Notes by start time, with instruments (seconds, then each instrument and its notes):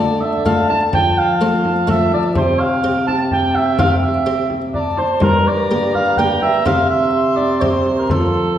Already playing: harpsichord D3 A3 D4, trombone D3, cor anglais D5, recorder A5
0.00 harpsichord F4
0.21 cor anglais E5, frame drum
0.44 harpsichord A3 D4 F4, cor anglais F5, recorder A5, frame drum
0.69 cor anglais A5, frame drum
0.92 trombone F3, harpsichord F3, cor anglais G5, recorder A5, frame drum
1.18 cor anglais F5
1.41 harpsichord A3 C4 F4
1.65 frame drum
1.87 harpsichord A3 C4 F4, cor anglais E5, frame drum
2.12 cor anglais D5, frame drum
2.34 trombone C3, harpsichord C3, cor anglais C5, recorder A5, frame drum
2.39 recorder G5
2.59 cor anglais F5
2.84 harpsichord C4 G4
3.07 cor anglais A5, frame drum
3.31 recorder G5, cor anglais G5, frame drum
3.55 cor anglais E5, frame drum
3.79 harpsichord C4 G4, cor anglais F5, frame drum
4.03 cor anglais E5
4.26 harpsichord C4 G4
4.50 frame drum
4.74 cor anglais D5, recorder A#5, frame drum
4.79 recorder A5
4.97 cor anglais C5, frame drum
5.20 harpsichord G2, trombone G2, cor anglais A#4, recorder A#5, frame drum
5.47 cor anglais D5
5.71 harpsichord A#3 G4
5.94 cor anglais F5, frame drum
6.17 harpsichord A#3 G4, cor anglais G5, recorder A#5, frame drum
6.42 cor anglais E5, frame drum
6.65 harpsichord C3 C4 G4, trombone C3, cor anglais F5, recorder C6, frame drum
6.89 cor anglais E5
7.13 recorder C6
7.36 cor anglais D5, frame drum
7.61 harpsichord C4 G4, cor anglais C5, recorder D6, frame drum
7.67 recorder C6
7.86 frame drum
7.99 cor anglais A#4
8.10 trombone F3, harpsichord F3, cor anglais A4, recorder C6, frame drum